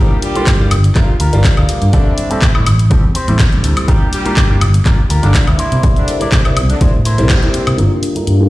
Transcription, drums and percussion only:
0.22 open hi-hat
0.35 closed hi-hat
0.47 kick, clap, closed hi-hat
0.71 open hi-hat, high woodblock
0.84 closed hi-hat
0.95 kick, clap, closed hi-hat
1.20 open hi-hat
1.33 closed hi-hat
1.44 kick, clap, closed hi-hat
1.57 closed hi-hat, high woodblock
1.69 open hi-hat
1.82 closed hi-hat
1.93 kick, closed hi-hat
2.18 open hi-hat
2.31 closed hi-hat
2.42 kick, clap, closed hi-hat
2.55 high woodblock
2.67 open hi-hat, high woodblock
2.79 closed hi-hat
2.91 kick, closed hi-hat
3.15 open hi-hat
3.28 closed hi-hat
3.39 kick, clap, closed hi-hat
3.52 closed hi-hat
3.64 open hi-hat
3.77 open hi-hat, high woodblock
3.88 kick, closed hi-hat
4.13 open hi-hat
4.26 closed hi-hat
4.37 kick, clap, closed hi-hat
4.61 open hi-hat, high woodblock
4.74 closed hi-hat
4.85 kick, clap, closed hi-hat
5.10 open hi-hat
5.23 closed hi-hat
5.34 kick, clap, closed hi-hat
5.47 closed hi-hat, high woodblock
5.59 open hi-hat
5.72 closed hi-hat
5.83 kick, closed hi-hat
5.96 closed hi-hat
6.08 open hi-hat
6.21 closed hi-hat
6.32 kick, clap, closed hi-hat
6.45 closed hi-hat, high woodblock
6.57 open hi-hat, high woodblock
6.70 closed hi-hat
6.81 kick, closed hi-hat
7.05 open hi-hat
7.18 closed hi-hat
7.29 kick, clap, closed hi-hat
7.43 closed hi-hat
7.54 open hi-hat
7.67 open hi-hat, high woodblock
7.78 closed hi-hat
8.03 open hi-hat
8.16 closed hi-hat
8.27 closed hi-hat

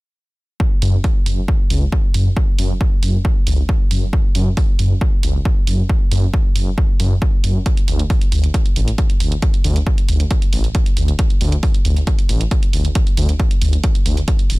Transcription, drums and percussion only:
0.60 kick
0.82 open hi-hat
1.04 kick, open hi-hat
1.26 open hi-hat
1.48 kick
1.70 open hi-hat
1.92 kick
2.14 open hi-hat
2.37 kick
2.59 open hi-hat
2.81 kick
3.03 open hi-hat
3.25 kick
3.47 open hi-hat
3.69 kick
3.91 open hi-hat
4.13 kick
4.35 open hi-hat
4.57 kick, open hi-hat
4.79 open hi-hat
5.01 kick
5.23 open hi-hat
5.45 kick
5.67 open hi-hat
5.89 kick
6.12 open hi-hat
6.34 kick
6.56 open hi-hat
6.78 kick
7.00 open hi-hat
7.22 kick
7.44 open hi-hat
7.66 kick, closed hi-hat
7.77 closed hi-hat
7.88 open hi-hat
7.99 closed hi-hat
8.10 kick, open hi-hat
8.21 closed hi-hat
8.32 open hi-hat
8.44 closed hi-hat
8.54 kick, closed hi-hat
8.66 closed hi-hat
8.76 open hi-hat
8.88 closed hi-hat
8.98 kick, closed hi-hat
9.10 closed hi-hat
9.20 open hi-hat
9.32 closed hi-hat
9.42 kick, closed hi-hat
9.54 closed hi-hat
9.64 open hi-hat
9.76 closed hi-hat
9.87 kick
9.98 closed hi-hat
10.09 open hi-hat
10.20 closed hi-hat
10.31 kick, closed hi-hat
10.42 closed hi-hat
10.53 open hi-hat
10.64 closed hi-hat
10.75 kick, closed hi-hat
10.86 closed hi-hat
10.97 open hi-hat
11.08 closed hi-hat
11.19 kick, closed hi-hat
11.30 closed hi-hat
11.41 open hi-hat
11.52 closed hi-hat
11.63 kick, open hi-hat
11.74 closed hi-hat
11.85 open hi-hat
11.96 closed hi-hat
12.07 kick, closed hi-hat
12.19 closed hi-hat
12.29 open hi-hat
12.41 closed hi-hat
12.51 kick, closed hi-hat
12.63 closed hi-hat
12.73 open hi-hat
12.85 closed hi-hat
12.95 kick, closed hi-hat
13.07 closed hi-hat
13.17 open hi-hat
13.29 closed hi-hat
13.40 kick, closed hi-hat
13.51 closed hi-hat
13.62 open hi-hat
13.73 closed hi-hat
13.84 kick, closed hi-hat
13.95 closed hi-hat
14.06 open hi-hat
14.17 closed hi-hat
14.28 kick, closed hi-hat
14.39 closed hi-hat
14.50 open hi-hat

